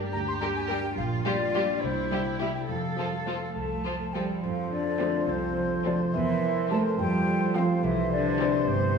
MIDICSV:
0, 0, Header, 1, 12, 480
1, 0, Start_track
1, 0, Key_signature, -1, "major"
1, 0, Tempo, 573614
1, 812, Time_signature, 6, 3, 24, 8
1, 4187, Tempo, 566572
1, 7556, End_track
2, 0, Start_track
2, 0, Title_t, "Flute"
2, 0, Program_c, 0, 73
2, 108, Note_on_c, 0, 82, 81
2, 158, Note_off_c, 0, 82, 0
2, 233, Note_on_c, 0, 84, 66
2, 284, Note_off_c, 0, 84, 0
2, 336, Note_on_c, 0, 82, 69
2, 387, Note_off_c, 0, 82, 0
2, 469, Note_on_c, 0, 80, 69
2, 520, Note_off_c, 0, 80, 0
2, 578, Note_on_c, 0, 79, 77
2, 808, Note_off_c, 0, 79, 0
2, 816, Note_on_c, 0, 77, 59
2, 869, Note_off_c, 0, 77, 0
2, 1058, Note_on_c, 0, 74, 80
2, 1464, Note_off_c, 0, 74, 0
2, 1479, Note_on_c, 0, 74, 49
2, 1529, Note_off_c, 0, 74, 0
2, 1532, Note_on_c, 0, 72, 71
2, 2008, Note_off_c, 0, 72, 0
2, 2013, Note_on_c, 0, 76, 61
2, 2128, Note_off_c, 0, 76, 0
2, 2134, Note_on_c, 0, 79, 52
2, 2184, Note_off_c, 0, 79, 0
2, 2250, Note_on_c, 0, 77, 55
2, 2962, Note_off_c, 0, 77, 0
2, 2976, Note_on_c, 0, 81, 58
2, 3459, Note_on_c, 0, 79, 50
2, 3471, Note_off_c, 0, 81, 0
2, 3697, Note_off_c, 0, 79, 0
2, 3702, Note_on_c, 0, 77, 56
2, 3940, Note_off_c, 0, 77, 0
2, 3949, Note_on_c, 0, 74, 68
2, 4433, Note_on_c, 0, 72, 60
2, 4445, Note_off_c, 0, 74, 0
2, 4906, Note_off_c, 0, 72, 0
2, 4911, Note_on_c, 0, 74, 58
2, 4964, Note_off_c, 0, 74, 0
2, 5146, Note_on_c, 0, 76, 73
2, 5621, Note_off_c, 0, 76, 0
2, 5632, Note_on_c, 0, 81, 76
2, 5686, Note_off_c, 0, 81, 0
2, 5865, Note_on_c, 0, 79, 84
2, 6350, Note_on_c, 0, 77, 69
2, 6363, Note_off_c, 0, 79, 0
2, 6593, Note_on_c, 0, 76, 76
2, 6606, Note_off_c, 0, 77, 0
2, 6822, Note_off_c, 0, 76, 0
2, 6827, Note_on_c, 0, 74, 77
2, 7299, Note_on_c, 0, 72, 79
2, 7312, Note_off_c, 0, 74, 0
2, 7556, Note_off_c, 0, 72, 0
2, 7556, End_track
3, 0, Start_track
3, 0, Title_t, "Oboe"
3, 0, Program_c, 1, 68
3, 3706, Note_on_c, 1, 72, 53
3, 6555, Note_off_c, 1, 72, 0
3, 6587, Note_on_c, 1, 72, 61
3, 7556, Note_off_c, 1, 72, 0
3, 7556, End_track
4, 0, Start_track
4, 0, Title_t, "Clarinet"
4, 0, Program_c, 2, 71
4, 3709, Note_on_c, 2, 69, 44
4, 5116, Note_off_c, 2, 69, 0
4, 5157, Note_on_c, 2, 70, 46
4, 5873, Note_on_c, 2, 69, 54
4, 5886, Note_off_c, 2, 70, 0
4, 6586, Note_off_c, 2, 69, 0
4, 6591, Note_on_c, 2, 67, 53
4, 7556, Note_off_c, 2, 67, 0
4, 7556, End_track
5, 0, Start_track
5, 0, Title_t, "Violin section"
5, 0, Program_c, 3, 48
5, 341, Note_on_c, 3, 70, 46
5, 408, Note_off_c, 3, 70, 0
5, 565, Note_on_c, 3, 70, 49
5, 631, Note_off_c, 3, 70, 0
5, 1051, Note_on_c, 3, 67, 58
5, 1117, Note_off_c, 3, 67, 0
5, 1291, Note_on_c, 3, 67, 54
5, 1358, Note_off_c, 3, 67, 0
5, 1776, Note_on_c, 3, 67, 41
5, 1843, Note_off_c, 3, 67, 0
5, 2011, Note_on_c, 3, 67, 41
5, 2078, Note_off_c, 3, 67, 0
5, 2506, Note_on_c, 3, 69, 38
5, 2573, Note_off_c, 3, 69, 0
5, 2753, Note_on_c, 3, 69, 38
5, 2820, Note_off_c, 3, 69, 0
5, 3235, Note_on_c, 3, 69, 35
5, 3302, Note_off_c, 3, 69, 0
5, 3473, Note_on_c, 3, 69, 33
5, 3540, Note_off_c, 3, 69, 0
5, 4181, Note_on_c, 3, 60, 56
5, 4363, Note_off_c, 3, 60, 0
5, 4915, Note_on_c, 3, 60, 50
5, 5091, Note_off_c, 3, 60, 0
5, 5632, Note_on_c, 3, 60, 57
5, 5811, Note_off_c, 3, 60, 0
5, 6350, Note_on_c, 3, 60, 56
5, 6528, Note_off_c, 3, 60, 0
5, 7069, Note_on_c, 3, 60, 59
5, 7246, Note_off_c, 3, 60, 0
5, 7556, End_track
6, 0, Start_track
6, 0, Title_t, "Violin section"
6, 0, Program_c, 4, 48
6, 342, Note_on_c, 4, 67, 49
6, 409, Note_off_c, 4, 67, 0
6, 577, Note_on_c, 4, 67, 38
6, 644, Note_off_c, 4, 67, 0
6, 1056, Note_on_c, 4, 65, 52
6, 1123, Note_off_c, 4, 65, 0
6, 1288, Note_on_c, 4, 65, 48
6, 1355, Note_off_c, 4, 65, 0
6, 1766, Note_on_c, 4, 64, 43
6, 1833, Note_off_c, 4, 64, 0
6, 2009, Note_on_c, 4, 64, 36
6, 2076, Note_off_c, 4, 64, 0
6, 2499, Note_on_c, 4, 65, 38
6, 2566, Note_off_c, 4, 65, 0
6, 2736, Note_on_c, 4, 65, 35
6, 2803, Note_off_c, 4, 65, 0
6, 3217, Note_on_c, 4, 65, 32
6, 3284, Note_off_c, 4, 65, 0
6, 3466, Note_on_c, 4, 65, 29
6, 3533, Note_off_c, 4, 65, 0
6, 4190, Note_on_c, 4, 57, 51
6, 4368, Note_off_c, 4, 57, 0
6, 4914, Note_on_c, 4, 57, 45
6, 5090, Note_off_c, 4, 57, 0
6, 5631, Note_on_c, 4, 58, 53
6, 5810, Note_off_c, 4, 58, 0
6, 6345, Note_on_c, 4, 57, 50
6, 6525, Note_off_c, 4, 57, 0
6, 7071, Note_on_c, 4, 55, 64
6, 7247, Note_off_c, 4, 55, 0
6, 7556, End_track
7, 0, Start_track
7, 0, Title_t, "French horn section"
7, 0, Program_c, 5, 60
7, 2973, Note_on_c, 5, 69, 45
7, 3429, Note_off_c, 5, 69, 0
7, 3466, Note_on_c, 5, 67, 50
7, 3707, Note_off_c, 5, 67, 0
7, 3709, Note_on_c, 5, 65, 46
7, 3942, Note_on_c, 5, 62, 58
7, 3944, Note_off_c, 5, 65, 0
7, 4415, Note_off_c, 5, 62, 0
7, 4431, Note_on_c, 5, 60, 49
7, 4905, Note_on_c, 5, 62, 54
7, 4908, Note_off_c, 5, 60, 0
7, 5014, Note_off_c, 5, 62, 0
7, 5156, Note_on_c, 5, 64, 56
7, 5626, Note_off_c, 5, 64, 0
7, 5628, Note_on_c, 5, 69, 62
7, 5862, Note_on_c, 5, 67, 63
7, 5865, Note_off_c, 5, 69, 0
7, 6336, Note_off_c, 5, 67, 0
7, 6339, Note_on_c, 5, 65, 56
7, 6449, Note_off_c, 5, 65, 0
7, 6584, Note_on_c, 5, 64, 62
7, 6822, Note_off_c, 5, 64, 0
7, 6837, Note_on_c, 5, 62, 73
7, 7302, Note_off_c, 5, 62, 0
7, 7310, Note_on_c, 5, 60, 64
7, 7556, Note_off_c, 5, 60, 0
7, 7556, End_track
8, 0, Start_track
8, 0, Title_t, "Harp"
8, 0, Program_c, 6, 46
8, 0, Note_on_c, 6, 43, 49
8, 0, Note_on_c, 6, 58, 41
8, 0, Note_on_c, 6, 62, 43
8, 0, Note_on_c, 6, 67, 36
8, 0, Note_on_c, 6, 70, 36
8, 91, Note_off_c, 6, 67, 0
8, 101, Note_on_c, 6, 67, 40
8, 331, Note_off_c, 6, 62, 0
8, 341, Note_on_c, 6, 62, 42
8, 569, Note_off_c, 6, 58, 0
8, 579, Note_on_c, 6, 58, 43
8, 815, Note_on_c, 6, 46, 55
8, 828, Note_off_c, 6, 43, 0
8, 1049, Note_on_c, 6, 55, 43
8, 1277, Note_off_c, 6, 62, 0
8, 1283, Note_off_c, 6, 67, 0
8, 1287, Note_on_c, 6, 62, 44
8, 1293, Note_on_c, 6, 67, 43
8, 1524, Note_on_c, 6, 48, 48
8, 1543, Note_off_c, 6, 70, 0
8, 1546, Note_off_c, 6, 62, 0
8, 1548, Note_off_c, 6, 46, 0
8, 1548, Note_off_c, 6, 58, 0
8, 1757, Note_off_c, 6, 55, 0
8, 1767, Note_on_c, 6, 55, 43
8, 1998, Note_off_c, 6, 67, 0
8, 2003, Note_on_c, 6, 64, 30
8, 2010, Note_on_c, 6, 67, 39
8, 2248, Note_on_c, 6, 41, 39
8, 2267, Note_off_c, 6, 48, 0
8, 2267, Note_off_c, 6, 64, 0
8, 2269, Note_off_c, 6, 55, 0
8, 2269, Note_off_c, 6, 67, 0
8, 2490, Note_on_c, 6, 53, 34
8, 2738, Note_on_c, 6, 65, 36
8, 2979, Note_on_c, 6, 69, 30
8, 3216, Note_off_c, 6, 65, 0
8, 3226, Note_on_c, 6, 65, 34
8, 3457, Note_off_c, 6, 53, 0
8, 3467, Note_on_c, 6, 53, 32
8, 3701, Note_off_c, 6, 41, 0
8, 3711, Note_on_c, 6, 41, 47
8, 3941, Note_off_c, 6, 53, 0
8, 3951, Note_on_c, 6, 53, 37
8, 4176, Note_off_c, 6, 65, 0
8, 4186, Note_on_c, 6, 65, 38
8, 4418, Note_off_c, 6, 69, 0
8, 4428, Note_on_c, 6, 69, 37
8, 4655, Note_off_c, 6, 53, 0
8, 4665, Note_on_c, 6, 53, 42
8, 4906, Note_on_c, 6, 48, 38
8, 5147, Note_on_c, 6, 40, 47
8, 5167, Note_off_c, 6, 48, 0
8, 5167, Note_off_c, 6, 53, 0
8, 5167, Note_off_c, 6, 65, 0
8, 5167, Note_off_c, 6, 69, 0
8, 5170, Note_off_c, 6, 41, 0
8, 5387, Note_on_c, 6, 55, 41
8, 5631, Note_on_c, 6, 60, 41
8, 5638, Note_on_c, 6, 70, 45
8, 5868, Note_on_c, 6, 41, 51
8, 5890, Note_off_c, 6, 55, 0
8, 5891, Note_off_c, 6, 40, 0
8, 5893, Note_off_c, 6, 70, 0
8, 6107, Note_on_c, 6, 53, 45
8, 6334, Note_off_c, 6, 60, 0
8, 6342, Note_on_c, 6, 60, 38
8, 6349, Note_on_c, 6, 69, 44
8, 6581, Note_on_c, 6, 48, 56
8, 6606, Note_off_c, 6, 53, 0
8, 6607, Note_off_c, 6, 41, 0
8, 6607, Note_off_c, 6, 69, 0
8, 6824, Note_on_c, 6, 55, 48
8, 7067, Note_on_c, 6, 64, 45
8, 7303, Note_on_c, 6, 67, 50
8, 7531, Note_off_c, 6, 55, 0
8, 7556, Note_off_c, 6, 48, 0
8, 7556, Note_off_c, 6, 60, 0
8, 7556, Note_off_c, 6, 64, 0
8, 7556, Note_off_c, 6, 67, 0
8, 7556, End_track
9, 0, Start_track
9, 0, Title_t, "Cello section"
9, 0, Program_c, 7, 48
9, 0, Note_on_c, 7, 62, 53
9, 89, Note_off_c, 7, 62, 0
9, 99, Note_on_c, 7, 67, 58
9, 795, Note_off_c, 7, 67, 0
9, 808, Note_on_c, 7, 65, 57
9, 1511, Note_off_c, 7, 65, 0
9, 1525, Note_on_c, 7, 64, 53
9, 2248, Note_off_c, 7, 64, 0
9, 2249, Note_on_c, 7, 69, 47
9, 2962, Note_off_c, 7, 69, 0
9, 2983, Note_on_c, 7, 57, 45
9, 3434, Note_off_c, 7, 57, 0
9, 3467, Note_on_c, 7, 55, 48
9, 3708, Note_off_c, 7, 55, 0
9, 3709, Note_on_c, 7, 53, 53
9, 3949, Note_off_c, 7, 53, 0
9, 3952, Note_on_c, 7, 50, 59
9, 4429, Note_on_c, 7, 48, 49
9, 4430, Note_off_c, 7, 50, 0
9, 4904, Note_on_c, 7, 50, 48
9, 4907, Note_off_c, 7, 48, 0
9, 4972, Note_off_c, 7, 50, 0
9, 5147, Note_on_c, 7, 52, 61
9, 5621, Note_off_c, 7, 52, 0
9, 5628, Note_on_c, 7, 57, 66
9, 5695, Note_off_c, 7, 57, 0
9, 5867, Note_on_c, 7, 55, 67
9, 6338, Note_off_c, 7, 55, 0
9, 6350, Note_on_c, 7, 53, 50
9, 6418, Note_off_c, 7, 53, 0
9, 6583, Note_on_c, 7, 52, 65
9, 6821, Note_off_c, 7, 52, 0
9, 6825, Note_on_c, 7, 50, 68
9, 7296, Note_off_c, 7, 50, 0
9, 7305, Note_on_c, 7, 48, 59
9, 7556, Note_off_c, 7, 48, 0
9, 7556, End_track
10, 0, Start_track
10, 0, Title_t, "Viola section"
10, 0, Program_c, 8, 48
10, 347, Note_on_c, 8, 55, 43
10, 413, Note_off_c, 8, 55, 0
10, 579, Note_on_c, 8, 55, 47
10, 646, Note_off_c, 8, 55, 0
10, 1060, Note_on_c, 8, 55, 48
10, 1127, Note_off_c, 8, 55, 0
10, 1292, Note_on_c, 8, 55, 45
10, 1359, Note_off_c, 8, 55, 0
10, 1771, Note_on_c, 8, 55, 39
10, 1838, Note_off_c, 8, 55, 0
10, 2009, Note_on_c, 8, 55, 42
10, 2076, Note_off_c, 8, 55, 0
10, 2492, Note_on_c, 8, 53, 37
10, 2559, Note_off_c, 8, 53, 0
10, 2739, Note_on_c, 8, 53, 35
10, 2805, Note_off_c, 8, 53, 0
10, 3226, Note_on_c, 8, 53, 32
10, 3293, Note_off_c, 8, 53, 0
10, 3466, Note_on_c, 8, 53, 34
10, 3533, Note_off_c, 8, 53, 0
10, 4192, Note_on_c, 8, 53, 45
10, 4369, Note_off_c, 8, 53, 0
10, 4905, Note_on_c, 8, 53, 47
10, 5085, Note_off_c, 8, 53, 0
10, 5624, Note_on_c, 8, 55, 52
10, 5806, Note_off_c, 8, 55, 0
10, 6345, Note_on_c, 8, 53, 54
10, 6525, Note_off_c, 8, 53, 0
10, 7063, Note_on_c, 8, 52, 60
10, 7243, Note_off_c, 8, 52, 0
10, 7556, End_track
11, 0, Start_track
11, 0, Title_t, "Bassoon"
11, 0, Program_c, 10, 70
11, 3700, Note_on_c, 10, 53, 45
11, 5111, Note_off_c, 10, 53, 0
11, 5141, Note_on_c, 10, 52, 50
11, 5859, Note_on_c, 10, 53, 58
11, 5871, Note_off_c, 10, 52, 0
11, 6573, Note_off_c, 10, 53, 0
11, 6578, Note_on_c, 10, 52, 51
11, 7556, Note_off_c, 10, 52, 0
11, 7556, End_track
12, 0, Start_track
12, 0, Title_t, "Double bass section"
12, 0, Program_c, 11, 48
12, 108, Note_on_c, 11, 38, 62
12, 674, Note_off_c, 11, 38, 0
12, 811, Note_on_c, 11, 34, 71
12, 1386, Note_off_c, 11, 34, 0
12, 1530, Note_on_c, 11, 36, 53
12, 2108, Note_off_c, 11, 36, 0
12, 2247, Note_on_c, 11, 41, 48
12, 2832, Note_off_c, 11, 41, 0
12, 2978, Note_on_c, 11, 36, 45
12, 3565, Note_off_c, 11, 36, 0
12, 3713, Note_on_c, 11, 41, 53
12, 4290, Note_off_c, 11, 41, 0
12, 4427, Note_on_c, 11, 36, 58
12, 5005, Note_off_c, 11, 36, 0
12, 5145, Note_on_c, 11, 40, 59
12, 5729, Note_off_c, 11, 40, 0
12, 5865, Note_on_c, 11, 41, 59
12, 6444, Note_off_c, 11, 41, 0
12, 6578, Note_on_c, 11, 36, 60
12, 7160, Note_off_c, 11, 36, 0
12, 7297, Note_on_c, 11, 31, 70
12, 7556, Note_off_c, 11, 31, 0
12, 7556, End_track
0, 0, End_of_file